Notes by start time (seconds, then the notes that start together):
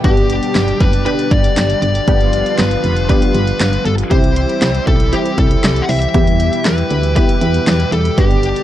Already playing: B2 G3 G4
0.04 G1 D3 B3 D4 G4, kick, closed hi-hat
0.17 closed hi-hat
0.30 closed hi-hat
0.43 closed hi-hat
0.55 G1, snare, clap, closed hi-hat
0.68 closed hi-hat
0.80 F#1 B4, kick, closed hi-hat
0.93 closed hi-hat
1.06 B3 D4 G4 B4, closed hi-hat
1.19 closed hi-hat
1.31 G1 D5, kick, closed hi-hat
1.44 closed hi-hat
1.57 G1, snare, clap, closed hi-hat
1.70 closed hi-hat
1.82 G1 D5, closed hi-hat
1.95 closed hi-hat
2.08 G1 F3 B3 D4 F4 G4, kick, closed hi-hat
2.21 closed hi-hat
2.33 closed hi-hat
2.46 closed hi-hat
2.58 G1 B4, snare, clap, closed hi-hat
2.71 closed hi-hat
2.84 F1, closed hi-hat
2.97 closed hi-hat
3.09 B3 D4 G4 B4, kick, closed hi-hat
3.22 closed hi-hat
3.35 G1, closed hi-hat
3.47 closed hi-hat
3.60 G1, snare, clap, closed hi-hat
3.73 closed hi-hat
3.85 G1 A4, closed hi-hat
3.98 closed hi-hat
4.11 C2 E3 G3 C4 E4 G4 C5, kick, closed hi-hat
4.24 closed hi-hat
4.36 closed hi-hat
4.49 closed hi-hat
4.62 C2, snare, clap, closed hi-hat
4.75 closed hi-hat
4.87 B1 A4, kick, closed hi-hat
5.00 closed hi-hat
5.13 C4 E4 G4, closed hi-hat
5.26 closed hi-hat
5.38 C2 A4, kick, closed hi-hat
5.51 closed hi-hat
5.64 C2, snare, clap, closed hi-hat
5.76 closed hi-hat
5.82 F#5
5.89 C2 E5, open hi-hat
6.02 closed hi-hat
6.14 E2 B2 G3 B3 E4 G4, kick, closed hi-hat
6.27 closed hi-hat
6.40 closed hi-hat
6.53 closed hi-hat
6.65 E2 B4, snare, clap, closed hi-hat
6.78 closed hi-hat
6.91 D2, closed hi-hat
7.03 closed hi-hat
7.16 B3 E4 G4 B4, kick, closed hi-hat
7.29 closed hi-hat
7.41 E2, closed hi-hat
7.54 closed hi-hat
7.67 E2, snare, clap, closed hi-hat
7.80 closed hi-hat
7.92 E2 A4, closed hi-hat
8.05 closed hi-hat
8.18 G1 D3 B3 D4 G4, kick, closed hi-hat
8.31 closed hi-hat
8.43 closed hi-hat
8.56 closed hi-hat